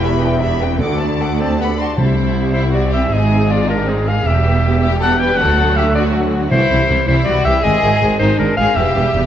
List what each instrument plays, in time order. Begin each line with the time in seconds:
Already playing: double bass section E1, cello section E2, french horn section E4
0.03 viola section G4, violin section E5 B5
0.21 french horn section E4, viola section B4, violin section G5
0.42 french horn section B3, viola section G4, violin section E5 B5
0.61 french horn section C4, viola section B4, violin section G5
0.80 double bass section D2, cello section D2, french horn section D4, viola section A4, violin section F#5 D6
0.98 viola section D5, violin section A5
1.20 viola section A4, violin section F#5 D6
1.39 violin section C4 A5, clarinet A4, viola section D5
1.59 violin section B3 F#5 B5, clarinet G4, viola section A4
1.78 violin section F#4 A5 C6, viola section D5, clarinet D5
1.97 cello section C2, double bass section C2, timpani C3, viola section G3 C4, violin section E4, clarinet C5
2.54 violin section E4, clarinet C5
2.73 violin section F#4, clarinet D5
2.91 violin section G4, clarinet E5
3.11 double bass section G#1, cello section G#2, viola section G#3, violin section D#4 G#4, clarinet D#5
3.50 violin section F4, clarinet D5
3.69 violin section D4, clarinet A#4
3.87 violin section C4, clarinet G#4
4.06 violin section G#4, clarinet F5
4.26 double bass section E1, cello section E2, viola section G3 B3, violin section G4, clarinet E5
4.81 violin section G4, clarinet E5
5.00 violin section A4, clarinet F#5
5.19 violin section B4, clarinet G5
5.37 cello section D2, double bass section D2, viola section D3 F#3, violin section F#4 A4, clarinet F#5
5.77 violin section G4, clarinet E5
5.95 violin section F#4, clarinet D5
6.50 cello section C2, double bass section C2, timpani C3, viola section E3 G3, violin section E4, clarinet C5
6.71 cello section C2, double bass section C2, viola section E3 G3, violin section E4
6.89 cello section C2, double bass section C2, viola section E3 G3, violin section E4
7.07 double bass section C2, cello section C2, viola section E3 G3, violin section E4, clarinet C5
7.24 double bass section C2, cello section C2, viola section E3 G3, violin section F#4, clarinet D5
7.29 violin section E4
7.44 double bass section C2, cello section C2, viola section E3 G3, violin section E4 G4, clarinet E5
7.61 double bass section G#1, cello section G#2, viola section D#3 G#3, violin section G#4, clarinet D#5
7.66 violin section C4
7.82 double bass section G#1, cello section G#2, viola section D#3 G#3, violin section C4
8.01 double bass section G#1, cello section G#2, viola section D#3 G#3, violin section C4
8.19 double bass section G#1, cello section G#2, viola section D#3 G#3, violin section C4 D#4, clarinet C5
8.38 double bass section G#1, cello section G#2, viola section D#3 G#3, violin section C4 D4, clarinet A#4
8.57 double bass section G#1, cello section G#2, viola section D#3 G#3, violin section C4 G#4, clarinet F5
8.76 double bass section E1, cello section E2, viola section G3, violin section B3 G4, clarinet E5
8.95 double bass section E1, cello section E2, viola section G3, violin section B3
9.14 double bass section E1, cello section E2, viola section G3, violin section B3